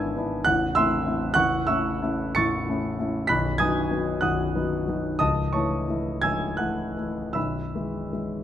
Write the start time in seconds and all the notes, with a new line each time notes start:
Already playing: G#1 G#2 B3 D4 E4 G#5 E6 G#6
0.17 B3 D4 E4
0.45 A0 A1 F#5 F#6
0.75 A3 C4 E4 E5 C6 E6
1.06 A3 C4 E4
1.34 A0 A1 F#5 C#6 F#6
1.67 A3 C#4 E4 E5 C#6 E6
2.02 A3 C#4 E4
2.35 A0 A1 C#6 A6 C#7
2.69 A3 C#4 E4
2.99 A3 C#4 E4
3.27 B0 B1 B5 F#6 B6
3.58 F#3 B3 D#4 G#5 D#6 G#6
3.91 F#3 B3 D#4
4.21 B0 B1 F#5 D#6 F#6
4.55 F#3 B3 D#4
4.88 F#3 B3 D#4
5.19 C#1 C#2 D#5 A5 D#6
5.53 E3 A3 E4 C#5 A5 C#6
5.88 E3 A3 E4
6.22 C#1 C#2 G#5 E6 G#6
6.57 E3 A3 E4 F#5 F#6
6.97 E3 A3 E4
7.33 B0 B1 E5 B5 E6
7.75 E3 G#3 E4
8.12 E3 G#3 E4